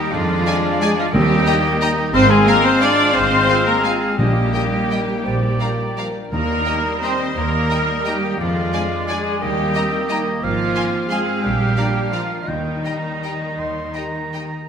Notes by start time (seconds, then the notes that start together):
Already playing: D#3 G3 D#4 G4 D#5 G5
0.00 D#4
0.06 G3
0.12 F2 F3 G#3 D4 F4 D5 F5
0.22 G#3
0.31 D4
0.39 G#4
0.45 G#3 D4 D5 G#5
0.57 D5
0.65 G#5
0.74 D5
0.81 G#3 D4 G#4 D5 G#5
0.92 D5
0.97 F3 F4 G#4 F5
1.08 D4
1.13 D#2 D#3 G3 A#3 C4 G4 D#5 G5
1.24 A#3
1.31 D#4
1.39 G4
1.46 A#3 D#4 A#4 D#5 G5 A#5
1.57 D#5
1.65 G5
1.73 A#5
1.82 A#3 D#4 D#5 G5 A#5
1.90 D#5
1.98 A#4
2.06 G4
2.13 G#1 G#2 G#3 C4 C5 F5 C6
2.22 G#3
2.30 G#3 C4 G#4 G#5
2.39 F4
2.47 G#3 A#3 F4 G#4 A#4 F5 G#5 A#5
2.56 C5
2.64 C4 C5 F5 C6
2.74 G#5
2.82 G#3 D4 F4 D5 F5 G#5 D6
2.91 C5
3.07 F4
3.14 G#1 G#2 G#3 C4 C5 C6
3.23 G#3
3.31 C4
3.40 F4
3.48 G#3 C4 F4 G#4 F5 G#5
3.58 C5
3.66 A#3 A#4 A#5
3.76 G#5
3.84 G#3 F4 G#4 F5 G#5
3.94 C5
4.03 G#4
4.11 F4
4.18 A#1 A#2 G3 A#3 G4 D#5 G5
4.28 G3
4.37 A#3
4.45 D#4
4.54 G3 A#3 D#4 G4 D#5 G5
4.64 A#4
4.73 D#5
4.82 G5
4.90 G3 D#4 D#5 G5
5.00 A#4
5.09 G4
5.18 D#4
5.25 A#1 A#2 C4 D5
5.35 F3
5.43 A#3
5.52 D4
5.60 F3 A#3 D4 F4 D5 F5 A#5
5.71 A#4
5.80 D5
5.89 F5
5.97 F3 D4 D5 F5 A#5
6.07 A#4
6.16 F4
6.24 D4
6.32 D#2 D#3 G3 A#3 A#4 D#5 A#5
6.41 A#3
6.49 D#4
6.59 G4
6.66 G3 D#4 D#5 G5 A#5
6.76 D#5
6.85 G5
6.94 A#5
7.02 G3 C4 D#4 C5 D#5 G5 A#5 C6
7.11 D#5
7.20 A#4
7.29 G4
7.36 D#2 D#3 A#3 A#4 A#5
7.45 A#3
7.53 D#4
7.62 G4
7.70 G3 D#4 A#4 D#5 G5 A#5
7.80 D#5
7.89 G5
7.98 A#5
8.05 G3 A#3 D#4 G4 D#5 G5 A#5
8.16 D#5
8.24 A#4
8.32 G4
8.39 F2 F3 G#3 F4 D5 F5
8.49 G#3
8.57 D4
8.65 G#4
8.73 G#3 D4 D5 G#5
8.83 D5
8.92 G#5
9.01 D5
9.08 G#3 D4 G#4 D5 G#5
9.26 G#4
9.34 D4
9.40 D#2 D#3 G3 A#3 G4 D#5 G5
9.50 A#3
9.58 D#4
9.66 G4
9.75 A#3 C4 D#4 A#4 D#5 G5 A#5
9.84 D#5
9.93 G5
10.01 A#5
10.09 A#3 D#4 D#5 G5 A#5
10.19 D#5
10.27 A#4
10.35 G4
10.42 G#1 G#2 F3 C4 F4 F5
10.51 G#3
10.59 C4
10.68 F4
10.75 C4 F4 C5 F5 G#5 C6
10.85 F4
10.94 F5
11.02 C6
11.10 G#3 C4 F4 G#4 F5 G#5 C6
11.20 C5
11.28 F4
11.42 A#1 A#2 G3 D4 G4 G5
11.52 F3
11.61 D4
11.69 F4
11.77 A#3 D4 F4 A#4 D5 F5 A#5
11.86 D5
11.96 F5
12.05 A#5
12.12 F3 G#3 D4 F4 D5 F5 A#5
12.22 D5
12.32 A#4
12.41 F4
12.48 D#2 D#3 G3 D#4 D#5 G5
12.58 A#3
12.67 D#4
12.76 G4
12.84 A#3 G4 D#5 G5 A#5
12.96 D#5
13.06 G5
13.15 A#5
13.24 A#3 G4 D#5 G5 A#5
13.34 D#5
13.43 A#4
13.52 G4
13.59 D#2 D#3 C6
13.69 A#3
13.78 D#4
13.87 G4
13.95 A#3 G4 A#4 D#5 G5 A#5
14.06 D#5
14.15 G5
14.25 A#5
14.34 A#3 G4 D#5 G5 A#5
14.43 D#5
14.52 A#4
14.61 G4